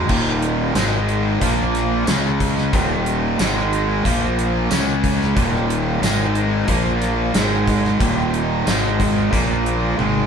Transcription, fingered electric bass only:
0, 0, Header, 1, 2, 480
1, 0, Start_track
1, 0, Tempo, 659341
1, 69, Time_signature, 4, 2, 24, 8
1, 7474, End_track
2, 0, Start_track
2, 0, Title_t, "Fingered electric bass"
2, 0, Program_c, 0, 33
2, 74, Note_on_c, 0, 27, 85
2, 522, Note_off_c, 0, 27, 0
2, 547, Note_on_c, 0, 32, 95
2, 999, Note_off_c, 0, 32, 0
2, 1035, Note_on_c, 0, 34, 90
2, 1483, Note_off_c, 0, 34, 0
2, 1511, Note_on_c, 0, 37, 89
2, 1961, Note_off_c, 0, 37, 0
2, 1991, Note_on_c, 0, 27, 89
2, 2441, Note_off_c, 0, 27, 0
2, 2475, Note_on_c, 0, 32, 91
2, 2923, Note_off_c, 0, 32, 0
2, 2952, Note_on_c, 0, 34, 91
2, 3401, Note_off_c, 0, 34, 0
2, 3434, Note_on_c, 0, 37, 92
2, 3882, Note_off_c, 0, 37, 0
2, 3910, Note_on_c, 0, 27, 96
2, 4360, Note_off_c, 0, 27, 0
2, 4383, Note_on_c, 0, 32, 95
2, 4836, Note_off_c, 0, 32, 0
2, 4866, Note_on_c, 0, 34, 94
2, 5318, Note_off_c, 0, 34, 0
2, 5354, Note_on_c, 0, 32, 90
2, 5802, Note_off_c, 0, 32, 0
2, 5827, Note_on_c, 0, 27, 93
2, 6279, Note_off_c, 0, 27, 0
2, 6312, Note_on_c, 0, 32, 96
2, 6762, Note_off_c, 0, 32, 0
2, 6791, Note_on_c, 0, 34, 90
2, 7243, Note_off_c, 0, 34, 0
2, 7279, Note_on_c, 0, 32, 86
2, 7474, Note_off_c, 0, 32, 0
2, 7474, End_track
0, 0, End_of_file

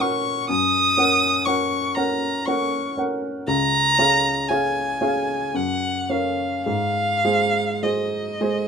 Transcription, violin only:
0, 0, Header, 1, 2, 480
1, 0, Start_track
1, 0, Tempo, 972447
1, 237, Time_signature, 3, 2, 24, 8
1, 716, Tempo, 1010101
1, 2156, Tempo, 1058201
1, 2636, Tempo, 1123596
1, 3116, Tempo, 1160542
1, 3950, End_track
2, 0, Start_track
2, 0, Title_t, "Violin"
2, 0, Program_c, 0, 40
2, 3, Note_on_c, 0, 85, 83
2, 241, Note_off_c, 0, 85, 0
2, 245, Note_on_c, 0, 87, 112
2, 718, Note_on_c, 0, 85, 86
2, 725, Note_off_c, 0, 87, 0
2, 956, Note_on_c, 0, 82, 74
2, 963, Note_off_c, 0, 85, 0
2, 1195, Note_on_c, 0, 85, 78
2, 1202, Note_off_c, 0, 82, 0
2, 1432, Note_off_c, 0, 85, 0
2, 1679, Note_on_c, 0, 82, 114
2, 2158, Note_on_c, 0, 80, 76
2, 2164, Note_off_c, 0, 82, 0
2, 2643, Note_on_c, 0, 78, 80
2, 2650, Note_off_c, 0, 80, 0
2, 2877, Note_on_c, 0, 77, 64
2, 2883, Note_off_c, 0, 78, 0
2, 3113, Note_off_c, 0, 77, 0
2, 3116, Note_on_c, 0, 77, 101
2, 3601, Note_on_c, 0, 75, 62
2, 3607, Note_off_c, 0, 77, 0
2, 3950, Note_off_c, 0, 75, 0
2, 3950, End_track
0, 0, End_of_file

